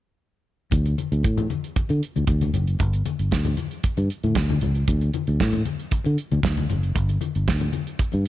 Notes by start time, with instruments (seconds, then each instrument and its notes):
0.71 fingered electric bass D2, kick, closed hi-hat, muted conga
0.86 closed hi-hat, muted conga
0.98 closed hi-hat, high conga
1.12 fingered electric bass D2, closed hi-hat
1.23 fingered electric bass A2, kick, closed hi-hat, muted conga
1.37 closed hi-hat, muted conga, low conga
1.50 closed hi-hat, high conga
1.64 closed hi-hat
1.76 muted fingered electric bass stroke, kick, closed hi-hat, muted conga
1.89 fingered electric bass D3, closed hi-hat, muted conga
2.03 closed hi-hat
2.16 fingered electric bass D2, closed hi-hat, high conga
2.27 fingered electric bass D2, kick, closed hi-hat, muted conga
2.41 closed hi-hat, high conga
2.53 fingered electric bass F#1, closed hi-hat, low conga
2.67 closed hi-hat
2.79 fingered electric bass G1, kick, closed hi-hat, muted conga
2.93 closed hi-hat
3.06 closed hi-hat, high conga
3.19 fingered electric bass G1, closed hi-hat
3.31 fingered electric bass D2, kick, snare, muted conga
3.45 closed hi-hat, muted conga, low conga
3.57 closed hi-hat, high conga
3.71 closed hi-hat
3.84 muted fingered electric bass stroke, kick, closed hi-hat
3.97 fingered electric bass G2, closed hi-hat, muted conga
4.10 closed hi-hat
4.23 fingered electric bass A2, closed hi-hat, high conga
4.35 fingered electric bass D2, kick, snare
4.49 closed hi-hat, muted conga, high conga
4.61 fingered electric bass C#2, closed hi-hat, low conga
4.75 closed hi-hat
4.88 fingered electric bass D2, kick, closed hi-hat, muted conga
5.01 closed hi-hat, muted conga
5.14 closed hi-hat, high conga
5.27 fingered electric bass D2, closed hi-hat
5.40 fingered electric bass A2, kick, snare
5.53 closed hi-hat, muted conga, low conga
5.65 closed hi-hat, high conga
5.79 closed hi-hat
5.91 muted fingered electric bass stroke, kick, closed hi-hat, muted conga
6.04 fingered electric bass D3, closed hi-hat, muted conga
6.18 closed hi-hat
6.31 fingered electric bass D2, closed hi-hat, high conga
6.43 fingered electric bass D2, kick, snare, muted conga
6.57 closed hi-hat, muted conga, high conga
6.70 fingered electric bass F#1, closed hi-hat, low conga
6.83 closed hi-hat
6.95 fingered electric bass G1, kick, closed hi-hat, muted conga
7.09 closed hi-hat, muted conga
7.21 closed hi-hat, high conga
7.35 fingered electric bass G1, closed hi-hat
7.48 fingered electric bass D2, kick, snare
7.60 closed hi-hat, muted conga, low conga
7.73 closed hi-hat, high conga
7.87 closed hi-hat
7.99 muted fingered electric bass stroke, kick, closed hi-hat
8.12 fingered electric bass G2, closed hi-hat, muted conga